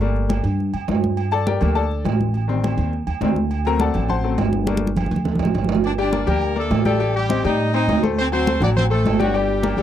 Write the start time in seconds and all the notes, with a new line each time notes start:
Already playing: G1
0.01 G3 A3 A#3, high conga, low agogo
0.16 high conga
0.29 high conga, low timbale, low agogo
0.44 G2, high conga, low agogo
0.60 high conga
0.73 F#2, high conga, low agogo
0.88 G2, high conga, low timbale, low agogo
1.04 high conga
1.17 high conga, low agogo
1.31 A4 D5 A5, high conga, low agogo
1.46 G4 A#4 D5 G5, high conga, low timbale
1.60 D2 G3 A3 A#3, high conga, low conga, low agogo
1.75 A4 D5 A5, high conga, low agogo
1.91 high conga
2.05 A1, high conga, low timbale, low agogo
2.21 high conga
2.34 high conga, low agogo
2.48 D#3 G3 C4, high conga
2.64 high conga, low timbale, low agogo
2.77 D#2, high conga, low agogo
2.93 high conga
3.07 D#2, high conga, low agogo
3.21 D2 D#3 G3 C4, high conga, low timbale, low agogo
3.36 high conga
3.51 high conga, low agogo
3.65 F#3 A3 C4 A#4 A#5, high conga, low agogo
3.80 A4 D5 F#5 A5, high conga, low timbale
3.94 A1, high conga, low conga, low agogo
4.09 C5 F#5 A5 C6, high conga, low conga, low agogo
4.24 F#3 A3 C4, high conga
4.38 G1, high conga, low timbale, low agogo
4.53 high conga
4.67 G3 A3 A#3, high conga, low agogo
4.77 high conga
4.87 high conga
4.96 low conga, low timbale, low agogo
5.06 low conga
5.11 D2, low agogo
5.16 low conga
5.25 low conga, high timbale
5.35 low conga
5.39 A1, low timbale, low agogo
5.45 low conga
5.54 G1, low conga, low timbale, low agogo
5.64 low conga
5.69 low timbale
5.75 low conga
5.84 D4 D5, high conga, low agogo
5.98 G3 D4 G4 D5 G5, high conga, low agogo
6.13 A#3 A#4 D5, high conga, low timbale
6.27 D2 G3 A#3 G4 A#4 G5, high conga, low conga, low agogo
6.41 high conga, low agogo
6.56 A3 A#3 A4 A#4 D5, high conga
6.71 A1, high conga, low timbale, low agogo
6.85 G3 A3 G4 A4 G5, high conga
7.00 G3 G4 G5, high conga, low agogo
7.15 G3 G4, high conga
7.29 C4 C5 D#5, high conga, low timbale, low agogo
7.44 A2 G3 D#4 G4 D#5 G5, high conga, low agogo
7.60 high conga
7.74 C4 D#4 C5 D#5, high conga, low agogo
7.88 D2, high conga, low timbale, low agogo
8.03 A3 A4 C5, high conga
8.18 C4 C5, high conga, low agogo
8.32 F#3 C4 F#4 C5 F#5, high conga, low agogo
8.47 A3 A4 C5, high conga, low timbale
8.60 A1 F#3 D4 F#4 D5 F#5, high conga, low conga, low agogo
8.77 C4 C5, high conga, low conga, low agogo
8.90 A3 A4 C5, high conga
9.04 G1, high conga, low timbale, low agogo
9.19 F#3 G3 F#4 G4 G5, high conga
9.34 G3 G4 G5, high conga, low agogo
9.49 high conga
9.63 A#3 A#4 D5, high conga, low timbale, low agogo
9.77 D2 G3 G4 G5, high conga, low agogo